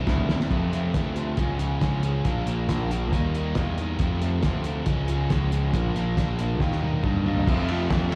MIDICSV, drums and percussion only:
0, 0, Header, 1, 2, 480
1, 0, Start_track
1, 0, Tempo, 435730
1, 566, Time_signature, 4, 2, 24, 8
1, 8980, End_track
2, 0, Start_track
2, 0, Title_t, "Drums"
2, 78, Note_on_c, 9, 36, 111
2, 81, Note_on_c, 9, 38, 100
2, 188, Note_off_c, 9, 36, 0
2, 191, Note_off_c, 9, 38, 0
2, 194, Note_on_c, 9, 43, 83
2, 304, Note_off_c, 9, 43, 0
2, 317, Note_on_c, 9, 38, 100
2, 427, Note_off_c, 9, 38, 0
2, 439, Note_on_c, 9, 38, 96
2, 550, Note_off_c, 9, 38, 0
2, 559, Note_on_c, 9, 36, 91
2, 564, Note_on_c, 9, 49, 72
2, 669, Note_off_c, 9, 36, 0
2, 674, Note_off_c, 9, 49, 0
2, 803, Note_on_c, 9, 42, 50
2, 804, Note_on_c, 9, 38, 29
2, 913, Note_off_c, 9, 42, 0
2, 915, Note_off_c, 9, 38, 0
2, 1038, Note_on_c, 9, 42, 75
2, 1039, Note_on_c, 9, 36, 102
2, 1039, Note_on_c, 9, 38, 94
2, 1148, Note_off_c, 9, 42, 0
2, 1149, Note_off_c, 9, 38, 0
2, 1150, Note_off_c, 9, 36, 0
2, 1277, Note_on_c, 9, 42, 61
2, 1387, Note_off_c, 9, 42, 0
2, 1510, Note_on_c, 9, 42, 71
2, 1516, Note_on_c, 9, 36, 92
2, 1620, Note_off_c, 9, 42, 0
2, 1626, Note_off_c, 9, 36, 0
2, 1756, Note_on_c, 9, 42, 55
2, 1866, Note_off_c, 9, 42, 0
2, 1999, Note_on_c, 9, 36, 93
2, 1999, Note_on_c, 9, 42, 70
2, 2000, Note_on_c, 9, 38, 95
2, 2109, Note_off_c, 9, 36, 0
2, 2109, Note_off_c, 9, 42, 0
2, 2110, Note_off_c, 9, 38, 0
2, 2236, Note_on_c, 9, 42, 53
2, 2347, Note_off_c, 9, 42, 0
2, 2477, Note_on_c, 9, 42, 70
2, 2480, Note_on_c, 9, 36, 90
2, 2587, Note_off_c, 9, 42, 0
2, 2590, Note_off_c, 9, 36, 0
2, 2718, Note_on_c, 9, 42, 57
2, 2829, Note_off_c, 9, 42, 0
2, 2961, Note_on_c, 9, 36, 95
2, 2963, Note_on_c, 9, 42, 77
2, 2964, Note_on_c, 9, 38, 100
2, 3071, Note_off_c, 9, 36, 0
2, 3073, Note_off_c, 9, 42, 0
2, 3074, Note_off_c, 9, 38, 0
2, 3207, Note_on_c, 9, 42, 57
2, 3317, Note_off_c, 9, 42, 0
2, 3444, Note_on_c, 9, 36, 88
2, 3447, Note_on_c, 9, 42, 69
2, 3555, Note_off_c, 9, 36, 0
2, 3557, Note_off_c, 9, 42, 0
2, 3686, Note_on_c, 9, 42, 55
2, 3796, Note_off_c, 9, 42, 0
2, 3913, Note_on_c, 9, 42, 71
2, 3914, Note_on_c, 9, 38, 101
2, 3922, Note_on_c, 9, 36, 99
2, 4023, Note_off_c, 9, 42, 0
2, 4024, Note_off_c, 9, 38, 0
2, 4033, Note_off_c, 9, 36, 0
2, 4162, Note_on_c, 9, 42, 52
2, 4272, Note_off_c, 9, 42, 0
2, 4394, Note_on_c, 9, 42, 62
2, 4403, Note_on_c, 9, 36, 90
2, 4504, Note_off_c, 9, 42, 0
2, 4513, Note_off_c, 9, 36, 0
2, 4644, Note_on_c, 9, 42, 52
2, 4645, Note_on_c, 9, 38, 28
2, 4755, Note_off_c, 9, 42, 0
2, 4756, Note_off_c, 9, 38, 0
2, 4875, Note_on_c, 9, 42, 68
2, 4876, Note_on_c, 9, 38, 93
2, 4882, Note_on_c, 9, 36, 101
2, 4986, Note_off_c, 9, 42, 0
2, 4987, Note_off_c, 9, 38, 0
2, 4992, Note_off_c, 9, 36, 0
2, 5111, Note_on_c, 9, 42, 57
2, 5221, Note_off_c, 9, 42, 0
2, 5352, Note_on_c, 9, 42, 72
2, 5360, Note_on_c, 9, 36, 99
2, 5462, Note_off_c, 9, 42, 0
2, 5470, Note_off_c, 9, 36, 0
2, 5596, Note_on_c, 9, 42, 55
2, 5706, Note_off_c, 9, 42, 0
2, 5840, Note_on_c, 9, 42, 76
2, 5841, Note_on_c, 9, 38, 98
2, 5842, Note_on_c, 9, 36, 102
2, 5951, Note_off_c, 9, 42, 0
2, 5952, Note_off_c, 9, 36, 0
2, 5952, Note_off_c, 9, 38, 0
2, 6081, Note_on_c, 9, 42, 57
2, 6192, Note_off_c, 9, 42, 0
2, 6318, Note_on_c, 9, 36, 85
2, 6319, Note_on_c, 9, 42, 73
2, 6428, Note_off_c, 9, 36, 0
2, 6429, Note_off_c, 9, 42, 0
2, 6565, Note_on_c, 9, 42, 56
2, 6566, Note_on_c, 9, 38, 29
2, 6675, Note_off_c, 9, 42, 0
2, 6676, Note_off_c, 9, 38, 0
2, 6799, Note_on_c, 9, 36, 95
2, 6804, Note_on_c, 9, 42, 75
2, 6805, Note_on_c, 9, 38, 94
2, 6909, Note_off_c, 9, 36, 0
2, 6914, Note_off_c, 9, 42, 0
2, 6915, Note_off_c, 9, 38, 0
2, 7036, Note_on_c, 9, 42, 58
2, 7146, Note_off_c, 9, 42, 0
2, 7274, Note_on_c, 9, 36, 93
2, 7276, Note_on_c, 9, 38, 48
2, 7385, Note_off_c, 9, 36, 0
2, 7386, Note_off_c, 9, 38, 0
2, 7398, Note_on_c, 9, 38, 50
2, 7509, Note_off_c, 9, 38, 0
2, 7519, Note_on_c, 9, 48, 58
2, 7629, Note_off_c, 9, 48, 0
2, 7634, Note_on_c, 9, 48, 56
2, 7744, Note_off_c, 9, 48, 0
2, 7751, Note_on_c, 9, 47, 69
2, 7752, Note_on_c, 9, 36, 102
2, 7861, Note_off_c, 9, 47, 0
2, 7862, Note_off_c, 9, 36, 0
2, 7872, Note_on_c, 9, 45, 59
2, 7983, Note_off_c, 9, 45, 0
2, 7996, Note_on_c, 9, 43, 76
2, 8106, Note_off_c, 9, 43, 0
2, 8111, Note_on_c, 9, 43, 71
2, 8221, Note_off_c, 9, 43, 0
2, 8234, Note_on_c, 9, 36, 112
2, 8241, Note_on_c, 9, 49, 102
2, 8344, Note_off_c, 9, 36, 0
2, 8352, Note_off_c, 9, 49, 0
2, 8466, Note_on_c, 9, 51, 78
2, 8576, Note_off_c, 9, 51, 0
2, 8707, Note_on_c, 9, 51, 101
2, 8708, Note_on_c, 9, 38, 117
2, 8710, Note_on_c, 9, 36, 111
2, 8817, Note_off_c, 9, 51, 0
2, 8818, Note_off_c, 9, 38, 0
2, 8820, Note_off_c, 9, 36, 0
2, 8946, Note_on_c, 9, 51, 82
2, 8980, Note_off_c, 9, 51, 0
2, 8980, End_track
0, 0, End_of_file